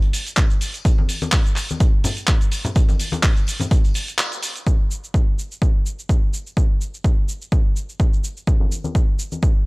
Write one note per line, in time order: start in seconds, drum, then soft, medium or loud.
0.02 closed hi-hat soft
0.13 open hi-hat loud
0.13 tambourine medium
0.13 shaker medium
0.27 closed hi-hat medium
0.27 tambourine soft
0.27 shaker soft
0.37 kick loud
0.37 clap loud
0.37 closed hi-hat medium
0.37 shaker soft
0.50 closed hi-hat soft
0.50 shaker soft
0.61 open hi-hat loud
0.61 tambourine medium
0.61 shaker medium
0.74 closed hi-hat medium
0.74 tambourine soft
0.74 shaker soft
0.85 kick loud
0.85 closed hi-hat medium
0.85 tambourine medium
0.85 shaker soft
0.98 high conga medium
1.09 open hi-hat medium
1.09 tambourine medium
1.09 shaker medium
1.22 closed hi-hat medium
1.22 tambourine soft
1.22 high conga medium
1.22 shaker soft
1.32 kick loud
1.32 clap loud
1.32 open hi-hat medium
1.32 shaker soft
1.46 closed hi-hat soft
1.46 shaker soft
1.56 clap soft
1.56 open hi-hat loud
1.56 tambourine medium
1.56 shaker medium
1.69 closed hi-hat medium
1.69 tambourine soft
1.69 high conga medium
1.69 shaker soft
1.80 kick loud
1.80 closed hi-hat medium
1.80 tambourine medium
1.80 shaker soft
2.04 open hi-hat loud
2.04 tambourine medium
2.04 low conga medium
2.04 shaker medium
2.17 closed hi-hat medium
2.17 tambourine soft
2.17 shaker soft
2.27 kick loud
2.27 clap loud
2.27 closed hi-hat medium
2.27 shaker soft
2.41 closed hi-hat soft
2.41 shaker soft
2.51 open hi-hat loud
2.51 tambourine medium
2.51 shaker medium
2.64 closed hi-hat medium
2.64 tambourine soft
2.64 low conga medium
2.64 shaker soft
2.75 kick loud
2.75 closed hi-hat medium
2.75 tambourine soft
2.75 shaker soft
2.89 closed hi-hat soft
2.89 tambourine soft
2.89 high conga medium
2.89 shaker soft
2.99 open hi-hat loud
2.99 tambourine medium
2.99 shaker medium
3.11 closed hi-hat medium
3.11 tambourine soft
3.11 high conga medium
3.11 shaker soft
3.23 kick loud
3.23 clap loud
3.23 open hi-hat medium
3.23 tambourine medium
3.23 shaker soft
3.36 closed hi-hat soft
3.36 tambourine soft
3.36 shaker soft
3.47 open hi-hat loud
3.47 tambourine loud
3.47 shaker medium
3.60 closed hi-hat medium
3.60 tambourine soft
3.60 high conga medium
3.60 low conga medium
3.60 shaker soft
3.71 kick loud
3.71 closed hi-hat medium
3.71 shaker soft
3.84 closed hi-hat soft
3.84 tambourine soft
3.84 shaker soft
3.94 open hi-hat loud
3.94 tambourine loud
3.94 shaker medium
4.08 closed hi-hat medium
4.08 tambourine soft
4.08 shaker soft
4.18 clap loud
4.18 closed hi-hat medium
4.18 tambourine medium
4.18 shaker soft
4.32 closed hi-hat soft
4.32 tambourine soft
4.32 shaker soft
4.43 open hi-hat loud
4.43 tambourine loud
4.43 shaker medium
4.56 closed hi-hat medium
4.56 tambourine soft
4.56 shaker soft
4.67 kick loud
4.67 shaker soft
4.91 shaker medium
5.04 shaker soft
5.14 kick loud
5.14 shaker soft
5.39 shaker medium
5.51 shaker soft
5.62 kick loud
5.62 shaker soft
5.86 shaker medium
5.99 shaker soft
6.09 kick loud
6.09 shaker soft
6.33 shaker medium
6.47 shaker soft
6.57 kick loud
6.57 shaker soft
6.81 shaker medium
6.94 shaker soft
7.04 kick loud
7.04 shaker soft
7.28 shaker medium
7.41 shaker soft
7.52 kick loud
7.52 shaker soft
7.76 shaker medium
7.89 shaker soft
8.00 kick loud
8.00 shaker soft
8.13 shaker soft
8.24 shaker medium
8.37 shaker soft
8.47 kick loud
8.47 shaker soft
8.60 high conga loud
8.71 tambourine medium
8.71 shaker medium
8.84 tambourine soft
8.84 high conga medium
8.84 shaker soft
8.95 kick loud
8.95 shaker soft
9.08 tambourine soft
9.18 tambourine medium
9.18 shaker medium
9.32 tambourine soft
9.32 high conga medium
9.32 shaker soft
9.43 kick loud
9.43 shaker soft